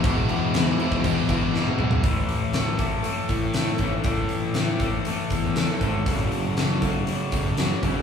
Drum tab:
CC |x-x-x-x-x-x-----|----------------|----------------|----------------|
HH |----------------|o-o-o-o-o-o-o-o-|o-o-o-o-o-o-o-o-|o-o-o-o-o-o-o-o-|
SD |----o-------o---|----o-------oo--|----o-------oo--|----o-------oo--|
T1 |-------------o--|----------------|----------------|----------------|
T2 |--------------o-|----------------|----------------|----------------|
FT |---------------o|----------------|----------------|----------------|
BD |o------oo-o-----|o-----o---o---o-|o-----o---o---o-|o-----o---o---o-|